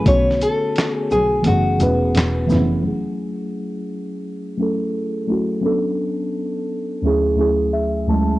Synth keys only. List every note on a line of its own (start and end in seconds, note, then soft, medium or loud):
0.04 1.31 D3 medium
0.04 1.32 A3 medium
0.04 1.33 B3 medium
0.04 1.33 C#4 medium
0.09 1.34 F#4 medium
1.42 1.76 E3 medium
1.42 1.76 A3 medium
1.42 1.77 B3 medium
1.42 1.77 C#4 medium
1.47 1.78 G#4 medium
1.78 2.42 E3 medium
1.78 2.43 A3 medium
1.78 2.44 B3 medium
1.78 2.44 C#4 medium
1.83 2.45 B4 medium
2.47 2.80 E3 medium
2.47 2.81 A3 medium
2.47 2.81 B3 medium
2.47 2.82 C#4 medium
2.52 2.83 E4 medium
2.83 4.10 F#3 medium
2.83 4.11 A3 medium
2.83 4.11 C#4 medium
2.87 4.13 G#4 medium
4.57 5.22 F#3 medium
4.57 5.22 A3 medium
4.57 5.23 C#4 medium
4.57 5.23 E4 medium
4.62 5.24 A4 medium
5.27 5.60 F#3 medium
5.27 5.60 A3 medium
5.27 5.61 C#4 medium
5.27 5.62 E4 medium
5.32 5.62 F#4 medium
5.61 6.89 F#3 medium
5.61 6.89 B3 medium
5.61 6.90 C#4 medium
5.61 6.91 D4 medium
5.66 6.91 A4 medium
7.02 7.34 D2 medium
7.02 7.35 F#3 medium
7.02 7.35 A3 medium
7.02 7.36 C#4 medium
7.02 7.36 E4 medium
7.07 7.37 G#4 medium
7.35 8.00 D2 medium
7.35 8.01 F#3 medium
7.35 8.01 A3 medium
7.35 8.02 C#4 medium
7.35 8.02 E4 medium
7.40 8.03 G#4 medium
7.73 8.06 E5 medium
8.07 8.39 D2 medium
8.07 8.39 F#3 medium
8.07 8.39 A3 medium
8.07 8.39 C#4 medium
8.07 8.39 E4 medium
8.07 8.39 A5 medium
8.12 8.39 G#3 medium